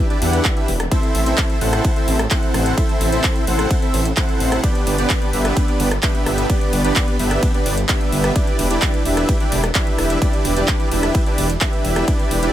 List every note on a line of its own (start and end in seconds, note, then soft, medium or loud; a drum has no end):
0.10 0.19 D4 medium
0.10 0.19 E4 medium
0.10 0.19 G4 medium
0.10 0.19 B4 medium
0.10 0.19 D5 medium
0.10 closed hi-hat soft
0.22 0.40 E2 medium
0.22 0.54 D4 medium
0.22 0.54 E4 medium
0.22 0.54 G4 medium
0.22 0.54 B4 medium
0.22 0.54 F#5 loud
0.22 open hi-hat loud
0.33 closed hi-hat soft
0.45 kick loud
0.45 clap loud
0.45 closed hi-hat soft
0.57 0.69 D4 medium
0.57 0.69 E4 medium
0.57 0.69 G4 medium
0.57 0.69 B4 medium
0.57 0.69 E5 loud
0.57 closed hi-hat soft
0.68 0.87 E1 medium
0.68 open hi-hat loud
0.80 cross-stick medium
0.80 closed hi-hat medium
0.91 1.24 C4 medium
0.91 1.24 E4 medium
0.91 1.24 A4 medium
0.91 1.24 C5 medium
0.91 1.24 E5 loud
0.91 kick loud
0.91 closed hi-hat medium
0.91 ride medium
1.03 closed hi-hat soft
1.15 1.33 A1 loud
1.15 open hi-hat loud
1.26 1.58 C4 medium
1.26 1.58 E4 medium
1.26 1.58 A4 medium
1.26 1.58 C5 medium
1.26 1.58 E5 loud
1.26 closed hi-hat soft
1.38 kick loud
1.38 clap loud
1.38 closed hi-hat medium
1.38 ride medium
1.50 closed hi-hat soft
1.61 1.80 A1 medium
1.61 1.93 C4 medium
1.61 1.93 E4 medium
1.61 1.93 A4 medium
1.61 1.93 C5 medium
1.61 1.93 F#5 medium
1.61 open hi-hat loud
1.73 cross-stick medium
1.73 closed hi-hat medium
1.85 kick loud
1.85 closed hi-hat soft
1.85 ride medium
1.96 2.17 C4 medium
1.96 2.17 E4 medium
1.96 2.16 A4 medium
1.96 2.17 C5 medium
1.96 2.16 E5 medium
1.96 closed hi-hat soft
2.08 2.26 A1 loud
2.08 open hi-hat loud
2.19 cross-stick medium
2.19 closed hi-hat soft
2.31 2.75 C4 medium
2.31 2.75 E4 medium
2.31 2.75 A4 medium
2.31 2.75 C5 medium
2.31 2.75 F#5 medium
2.31 kick loud
2.31 clap loud
2.31 closed hi-hat medium
2.31 ride medium
2.43 closed hi-hat soft
2.54 2.73 A1 medium
2.54 cross-stick medium
2.54 open hi-hat medium
2.66 closed hi-hat soft
2.78 3.10 C4 medium
2.78 3.10 E4 medium
2.78 3.10 A4 medium
2.78 3.10 C5 medium
2.78 3.10 E5 loud
2.78 kick loud
2.78 closed hi-hat medium
2.78 ride medium
2.89 closed hi-hat soft
3.01 3.19 A1 loud
3.01 open hi-hat loud
3.12 3.45 C4 medium
3.12 3.45 E4 medium
3.12 3.45 A4 medium
3.12 3.45 C5 medium
3.12 3.45 E5 loud
3.12 closed hi-hat medium
3.24 kick loud
3.24 clap loud
3.24 closed hi-hat medium
3.24 ride medium
3.36 closed hi-hat soft
3.47 3.66 A1 medium
3.47 3.79 C4 medium
3.47 3.79 E4 medium
3.47 3.79 A4 medium
3.47 3.79 C5 medium
3.47 3.79 F#5 medium
3.47 open hi-hat medium
3.59 cross-stick medium
3.59 closed hi-hat medium
3.71 kick loud
3.71 closed hi-hat medium
3.71 ride medium
3.82 4.02 C4 medium
3.82 4.03 E4 medium
3.82 4.03 A4 medium
3.82 4.02 C5 medium
3.82 4.03 E5 medium
3.82 closed hi-hat soft
3.94 4.12 A1 loud
3.94 open hi-hat loud
4.05 closed hi-hat soft
4.17 4.61 C4 medium
4.17 4.61 E4 medium
4.17 4.61 A4 medium
4.17 4.61 C5 medium
4.17 4.61 F#5 loud
4.17 kick loud
4.17 clap loud
4.17 closed hi-hat medium
4.17 ride medium
4.29 closed hi-hat soft
4.40 4.59 A1 medium
4.40 open hi-hat medium
4.52 cross-stick medium
4.52 closed hi-hat medium
4.64 4.96 B3 medium
4.64 4.96 D4 medium
4.64 4.96 G4 medium
4.64 4.96 B4 medium
4.64 4.96 D5 loud
4.64 kick loud
4.64 closed hi-hat medium
4.64 ride medium
4.75 closed hi-hat soft
4.87 5.05 G1 loud
4.87 open hi-hat loud
4.98 5.31 B3 medium
4.98 5.31 D4 medium
4.98 5.31 G4 medium
4.98 5.31 B4 medium
4.98 5.31 D5 loud
4.98 closed hi-hat medium
5.10 kick loud
5.10 clap loud
5.10 closed hi-hat medium
5.10 ride medium
5.22 closed hi-hat soft
5.33 5.52 G1 medium
5.33 5.65 B3 medium
5.33 5.65 D4 medium
5.33 5.65 G4 medium
5.33 5.65 B4 medium
5.33 5.65 E5 medium
5.33 open hi-hat medium
5.45 cross-stick medium
5.45 closed hi-hat medium
5.57 kick loud
5.57 closed hi-hat medium
5.57 ride medium
5.68 5.89 B3 medium
5.68 5.89 D4 medium
5.68 5.89 G4 medium
5.68 5.89 B4 medium
5.68 5.89 D5 loud
5.68 closed hi-hat soft
5.80 5.98 G1 loud
5.80 open hi-hat loud
5.91 cross-stick medium
5.91 closed hi-hat medium
6.03 6.47 B3 medium
6.03 6.47 D4 medium
6.03 6.47 G4 medium
6.03 6.47 B4 medium
6.03 6.47 E5 medium
6.03 kick loud
6.03 clap loud
6.03 closed hi-hat medium
6.03 ride medium
6.15 closed hi-hat soft
6.26 6.45 G1 medium
6.26 cross-stick medium
6.26 open hi-hat medium
6.38 closed hi-hat medium
6.50 6.82 B3 medium
6.50 6.82 D4 medium
6.50 6.82 G4 medium
6.50 6.82 B4 medium
6.50 6.82 D5 loud
6.50 kick loud
6.50 closed hi-hat medium
6.50 ride medium
6.61 closed hi-hat soft
6.73 6.91 G1 loud
6.73 open hi-hat loud
6.84 7.17 B3 medium
6.84 7.17 D4 medium
6.84 7.17 G4 medium
6.84 7.17 B4 medium
6.84 7.17 D5 loud
6.84 closed hi-hat medium
6.96 kick loud
6.96 clap loud
6.96 closed hi-hat medium
6.96 ride medium
7.08 closed hi-hat soft
7.19 7.38 G1 medium
7.19 7.51 B3 medium
7.19 7.51 D4 medium
7.19 7.51 G4 medium
7.19 7.51 B4 medium
7.19 7.51 E5 medium
7.19 open hi-hat medium
7.31 cross-stick medium
7.31 closed hi-hat medium
7.43 kick loud
7.43 closed hi-hat medium
7.43 ride medium
7.54 7.75 B3 medium
7.54 7.75 D4 medium
7.54 7.75 G4 medium
7.54 7.75 B4 medium
7.54 7.75 D5 medium
7.54 closed hi-hat soft
7.66 7.84 G1 loud
7.66 open hi-hat loud
7.78 closed hi-hat medium
7.89 8.33 B3 medium
7.89 8.33 D4 medium
7.89 8.33 G4 medium
7.89 8.33 B4 medium
7.89 8.33 E5 medium
7.89 kick loud
7.89 clap loud
7.89 closed hi-hat medium
7.89 ride medium
8.01 closed hi-hat soft
8.12 8.31 G1 medium
8.12 open hi-hat medium
8.24 cross-stick medium
8.24 closed hi-hat medium
8.36 8.68 D4 medium
8.36 8.68 E4 medium
8.36 8.68 G4 medium
8.36 8.68 B4 medium
8.36 8.68 D5 loud
8.36 kick loud
8.36 closed hi-hat medium
8.36 ride medium
8.47 closed hi-hat soft
8.59 8.78 E1 loud
8.59 open hi-hat loud
8.71 9.03 D4 medium
8.71 9.03 E4 medium
8.71 9.03 G4 medium
8.71 9.03 B4 medium
8.71 9.03 D5 loud
8.71 closed hi-hat medium
8.82 kick loud
8.82 clap loud
8.82 closed hi-hat medium
8.82 ride medium
8.94 closed hi-hat soft
9.05 9.24 E1 medium
9.05 9.38 D4 medium
9.05 9.38 E4 medium
9.05 9.38 G4 medium
9.05 9.38 B4 medium
9.05 9.38 E5 medium
9.05 open hi-hat medium
9.17 cross-stick medium
9.17 closed hi-hat medium
9.29 kick loud
9.29 closed hi-hat medium
9.29 ride medium
9.40 9.61 D4 medium
9.40 9.61 E4 medium
9.40 9.61 G4 medium
9.40 9.61 B4 medium
9.40 9.61 D5 loud
9.40 closed hi-hat soft
9.52 9.71 E1 loud
9.52 open hi-hat loud
9.64 cross-stick medium
9.64 closed hi-hat medium
9.75 10.19 D4 medium
9.75 10.19 E4 medium
9.75 10.19 G4 medium
9.75 10.19 B4 medium
9.75 10.19 E5 medium
9.75 kick loud
9.75 clap loud
9.75 closed hi-hat medium
9.75 ride medium
9.87 closed hi-hat soft
9.98 10.17 E1 medium
9.98 cross-stick medium
9.98 open hi-hat medium
10.10 closed hi-hat medium
10.22 10.54 D4 medium
10.22 10.54 E4 medium
10.22 10.54 G4 medium
10.22 10.54 B4 medium
10.22 10.54 D5 loud
10.22 kick loud
10.22 closed hi-hat medium
10.22 ride medium
10.33 closed hi-hat soft
10.45 10.64 E1 loud
10.45 open hi-hat loud
10.57 10.89 D4 medium
10.57 10.89 E4 medium
10.57 10.89 G4 medium
10.57 10.89 B4 medium
10.57 10.89 D5 loud
10.57 closed hi-hat medium
10.68 kick loud
10.68 clap loud
10.68 closed hi-hat medium
10.68 ride medium
10.80 closed hi-hat soft
10.91 11.10 E1 medium
10.91 11.24 D4 medium
10.91 11.24 E4 medium
10.91 11.24 G4 medium
10.91 11.24 B4 medium
10.91 11.24 E5 medium
10.91 open hi-hat loud
11.03 cross-stick medium
11.03 closed hi-hat medium
11.15 kick loud
11.15 closed hi-hat medium
11.15 ride medium
11.26 11.47 D4 medium
11.26 11.47 E4 medium
11.26 11.47 G4 medium
11.26 11.47 B4 medium
11.26 11.47 D5 medium
11.26 closed hi-hat soft
11.38 11.57 E1 loud
11.38 open hi-hat loud
11.50 closed hi-hat medium
11.61 12.05 D4 medium
11.61 12.05 E4 medium
11.61 12.05 G4 medium
11.61 12.05 B4 medium
11.61 12.05 E5 medium
11.61 kick loud
11.61 clap loud
11.61 closed hi-hat medium
11.61 ride medium
11.73 closed hi-hat soft
11.84 12.03 E1 medium
11.84 open hi-hat medium
11.96 cross-stick medium
11.96 closed hi-hat medium
12.08 12.40 D4 medium
12.08 12.40 E4 medium
12.08 12.40 G4 medium
12.08 12.40 B4 medium
12.08 12.40 D5 loud
12.08 kick loud
12.08 closed hi-hat medium
12.08 ride medium
12.19 closed hi-hat soft
12.31 12.50 E1 loud
12.31 open hi-hat loud
12.43 12.53 D4 medium
12.43 12.53 E4 medium
12.43 12.53 G4 medium
12.43 12.53 B4 medium
12.43 12.53 D5 loud
12.43 closed hi-hat medium